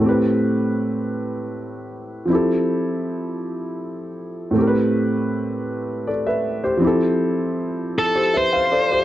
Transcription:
<<
  \new Staff \with { instrumentName = "Lead electric guitar" } { \time 6/8 \key a \minor \tempo 4. = 53 r2. | r2. | r2. | r4. a'8 c''4 | }
  \new Staff \with { instrumentName = "Grand piano" } { \time 6/8 \key a \minor << { r2. | r2. | r2 <a' d''>16 <b' e''>8 <g' c''>16~ | <g' c''>16 r4. <g' c''>16 <b' e''>16 <c'' f''>16 <a' d''>16 <g' c''>16 | } \\ { <a, a c' g' b'>2. | <f c' e' g' a'>2. | <a, a c' g' bes' b'>2. | <f c' e' g' a'>2. | } >> }
>>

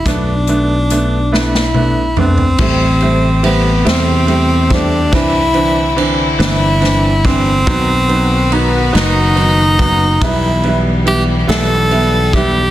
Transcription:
<<
  \new Staff \with { instrumentName = "Tenor saxophone" } { \time 6/8 \key b \phrygian \tempo 4. = 47 d'4. e'4 c'8~ | c'4 b8 c'4 d'8 | e'4 r8 e'4 c'8~ | c'4 b8 dis'4. |
e'8 r8 g'8 a'4 g'8 | }
  \new Staff \with { instrumentName = "Upright piano" } { \time 6/8 \key b \phrygian <a b d'>8 <a b d'>8 <a b d'>8 <a b d'>8 <a b d'>8 <a b d'>8 | <g a c'>8 <g a c'>8 <g a c'>8 <g a c'>8 <g a c'>8 <g a c'>8 | <e c' d'>8 <e c' d'>8 <e c' d'>8 <e c' d'>8 <e c' d'>8 <e c' d'>8 | <fis b dis'>8 <fis b dis'>8 <fis b dis'>8 <fis b dis'>8 <fis b dis'>8 <fis b dis'>8 |
<g b e'>8 <g b e'>8 <g b e'>8 <g b e'>8 <g b e'>8 <g b e'>8 | }
  \new Staff \with { instrumentName = "String section" } { \time 6/8 \key b \phrygian r2. | <c a g'>2. | <d c' e'>2. | <dis fis' b'>2. |
<e g b>2. | }
  \new Staff \with { instrumentName = "Fretless electric bass" } { \clef bass \time 6/8 \key b \phrygian b,,2. | a,,4. e,4. | c,4. g,,4. | b,,4. fis,,4. |
b,,4. b,,4. | }
  \new DrumStaff \with { instrumentName = "Drums" } \drummode { \time 6/8 <hh bd>8 hh8 hh8 sn16 sn16 tommh8 toml16 tomfh16 | <cymc bd>8 cymr8 cymr8 <cymr sn>8 cymr8 <bd cymr>8 | <bd cymr>8 cymr8 cymr8 <cymr sn>8 <cymr sn>8 <bd cymr>8 | <bd cymr>8 cymr8 cymr8 <cymr sn>8 cymr8 <bd cymr>8 |
<bd cymr>8 cymr8 cymr8 <cymr sn>8 cymr8 <bd cymr>8 | }
>>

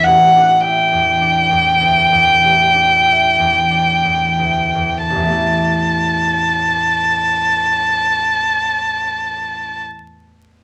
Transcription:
<<
  \new Staff \with { instrumentName = "Violin" } { \time 4/4 \key e \minor \tempo 4 = 43 fis''8 g''2.~ g''8 | a''1 | }
  \new Staff \with { instrumentName = "Harp" } { \clef bass \time 4/4 \key e \minor <a,, e'>16 d'16 e'16 e,16 d'16 e,16 d,16 e,16 a,,16 d'16 e'16 e,16 d'16 e,16 d,16 e,16 | <a,, e, e a b e'>1 | }
>>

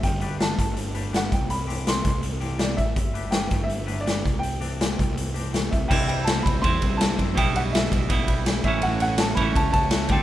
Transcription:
<<
  \new Staff \with { instrumentName = "Upright piano" } { \time 4/4 \key c \lydian \tempo 4 = 164 g''4 a''8 a''8 r4 fis''8 g''8 | b''4 c'''8 c'''8 r4 d''8 e''8~ | e''4 g''4 e''4 d''4 | g''2.~ g''8 e''8 |
g''8 g''8 a''8 b''8 c'''4 a''4 | g''8 fis''8 e''2 r8 e''8 | fis''8 fis''8 a''8 b''8 a''8 a''4 g''8 | }
  \new Staff \with { instrumentName = "Tonewheel organ" } { \time 4/4 \key c \lydian << { r1 | r1 | r1 | r1 |
e''1~ | e''2.~ e''8 fis''8~ | fis''2.~ fis''8 g''8 | } \\ { r1 | r1 | r1 | r1 |
<d' c''>1 | <d' g'>2.~ <d' g'>8 <cis' a'>8~ | <cis' a'>2.~ <cis' a'>8 <d' c''>8 | } >> }
  \new Staff \with { instrumentName = "Clean electric guitar" } { \time 4/4 \key c \lydian r8 <a d' g' b'>8 <a d' g' b'>8 r4 <a d' g' b'>8 <a d' g' b'>8 r8 | r8 <e c' d' g'>8 <e c' d' g'>8 r4 <e c' d' g'>8 <e c' d' g'>8 r8 | r8 <a d' g' b'>8 <a d' g' b'>8 r4 <a d' g' b'>8 <a d' g' b'>8 r8 | r8 <e c' d' g'>8 <e c' d' g'>8 r4 <e c' d' g'>8 <e c' d' g'>8 r8 |
<c e g d' e'>2.~ <c e g d' e'>8 <c e g d' e'>8 | <b, e g d' e'>2.~ <b, e g d' e'>8 <a, fis cis' e'>8~ | <a, fis cis' e'>2. <a, fis cis' e'>8 <d g c' g' a'>8 | }
  \new Staff \with { instrumentName = "Overdriven electric guitar" } { \time 4/4 \key c \lydian r1 | r1 | r1 | r1 |
<c g c' e'>2 <c g c' e'>2 | <b, g b e'>2 <b, g b e'>4. <a, e a cis' e'>8~ | <a, e a cis' e'>4. <a, e a cis' e'>2 <d a c'>8 | }
  \new Staff \with { instrumentName = "Fingered electric bass" } { \clef bass \time 4/4 \key c \lydian g,,4. g,,2 c,8~ | c,4. c,2 a,,8 | g,,4. g,,2 c,8~ | c,4. c,2 c,8 |
c,4. c,8 e,8 c,4 fis,8 | b,,4. b,,8 b,,8 b,,4 a,,8 | a,,4. a,,8 cis,8 cis,4 d,8 | }
  \new DrumStaff \with { instrumentName = "Drums" } \drummode { \time 4/4 <hh bd>8 hh8 <hh sn>8 <hh bd>8 hh8 hh8 <hh sn>8 <hh bd>8 | hh8 hh8 <hh sn>8 <hh bd>8 hh8 hh8 <hh sn>8 <hh bd>8 | <hh bd>8 hh8 <hh sn>8 <hh bd>8 hh8 hh8 <hh sn>8 <hh bd>8 | hh8 hh8 <hh sn>8 <hh bd>8 hh8 hh8 <hh sn>8 <hh bd>8 |
<cymc bd>8 cymr8 <cymr sn>8 <bd cymr>8 <bd cymr>8 <bd cymr>8 <cymr sn>8 <bd cymr>8 | <bd cymr>8 cymr8 <cymr sn>8 <bd cymr>8 <bd cymr>8 <bd cymr>8 <cymr sn>8 <bd cymr>8 | cymr8 cymr8 <cymr sn>8 <bd cymr>8 <bd cymr>8 <bd cymr>8 <cymr sn>8 <bd cymr>8 | }
>>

